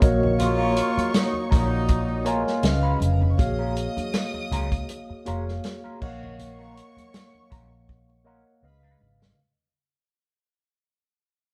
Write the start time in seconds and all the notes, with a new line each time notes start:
0.01 A#1 A#3 F#4 A#4 C#5 D#5 F5 C#6, kick, closed hi-hat, high conga
0.21 muted clean electric guitar stroke, low conga
0.38 C#3 A#3 F4, muted clean electric guitar stroke, closed hi-hat, low conga
0.58 F#3 C#4 F4 A#4, muted conga
0.77 closed hi-hat
0.95 muted clean electric guitar stroke, muted fingered electric bass stroke, closed hi-hat, high conga
1.12 A#2 F#3 D#4, muted clean electric guitar stroke, snare, closed hi-hat
1.32 muted clean electric guitar stroke, high conga
1.49 A#1 A#2 F#3 C#4 D#4 F4 A#4, kick, closed hi-hat, high conga, low conga
1.88 kick, closed hi-hat, muted conga
2.07 muted clean electric guitar stroke, muted conga
2.25 B2 F#3 G#3 A#3 C#4 F4 A#4 C#5 D#5 F5 G#5, closed hi-hat
2.47 snare
2.63 C#2 C#3 C#4 B4 D#5 E5 F5 F6, muted clean electric guitar stroke, snare, closed hi-hat
2.72 D#4 D#5 F5
2.83 G#3 D#4 F4 B4 F5, muted conga
2.91 F#4 F#5
3.00 F1 G#4 G#5, closed hi-hat, high conga
3.11 A#4 A#5
3.20 B4 B5, muted clean electric guitar stroke, low conga
3.30 C#5 C#6
3.37 A#1 A#3 F#4 G#4 C#5 D#5 F5 D#6, muted clean electric guitar stroke, kick, closed hi-hat, muted conga, low conga
3.58 G#3 C#4 F4 A#4, muted conga
3.77 closed hi-hat
3.97 muted clean electric guitar stroke, muted fingered electric bass stroke, closed hi-hat, high conga
4.14 muted clean electric guitar stroke, snare, closed hi-hat
4.34 muted clean electric guitar stroke, muted conga, high conga
4.52 C#2 G#3 C#4 F4 A#4, closed hi-hat, high conga, low conga
4.72 kick, closed hi-hat
4.89 muted clean electric guitar stroke, closed hi-hat, muted conga
5.10 muted clean electric guitar stroke, muted fingered electric bass stroke
5.26 F1 G#3 A#3 C#4 F4 F#4 G#4 A#4 C#5 F5, closed hi-hat
5.49 snare
5.64 muted clean electric guitar stroke, snare, closed hi-hat, muted conga
5.84 G#3 C#4 F4 A#4, muted conga
6.00 A#1 A#3 A#4 C#5 D#5 F5 F#5 C#6, kick, crash, high conga
6.22 muted clean electric guitar stroke, low conga
6.38 muted clean electric guitar stroke, closed hi-hat, muted conga, low conga
6.59 F#3 C#4 F4 A#4, muted conga
6.77 closed hi-hat
6.96 muted clean electric guitar stroke, muted fingered electric bass stroke, closed hi-hat, high conga
7.13 muted clean electric guitar stroke, snare, closed hi-hat, muted conga
7.33 muted clean electric guitar stroke, high conga
7.50 A#1 F#3 C#4 F4 A#4, kick, closed hi-hat, high conga, low conga
7.72 muted clean electric guitar stroke
7.89 muted clean electric guitar stroke, kick, muted conga
8.09 muted clean electric guitar stroke, muted conga
8.24 F#3 A#3 C#4 F4 A#4 C#5 D#5 F5 F#5
8.63 C#2 C#3 G#3 B4 D#5 F5 B5, muted clean electric guitar stroke, muted conga
8.83 G#3 D#4 F4 B4, muted conga
9.01 G#1, muted clean electric guitar stroke, high conga
9.20 muted clean electric guitar stroke, snare, low conga